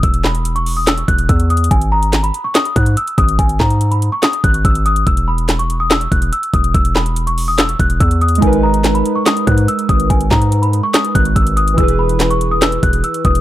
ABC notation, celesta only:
X:1
M:4/4
L:1/16
Q:1/4=143
K:G#m
V:1 name="Celesta"
e'2 b3 c'2 d' e'2 f'2 e'2 d'2 | g2 a3 b2 c' d'2 f'2 e'2 d'2 | g2 a3 b2 c' d'2 f'2 e'2 d'2 | e'2 b3 c'2 d' e'2 f'2 e'2 d'2 |
e'2 b3 c'2 d' e'2 f'2 e'2 d'2 | g2 a3 b2 c' d'2 f'2 e'2 d'2 | g2 a3 b2 c' d'2 f'2 e'2 d'2 | e'2 b3 c'2 d' e'2 f'2 e'2 d'2 |]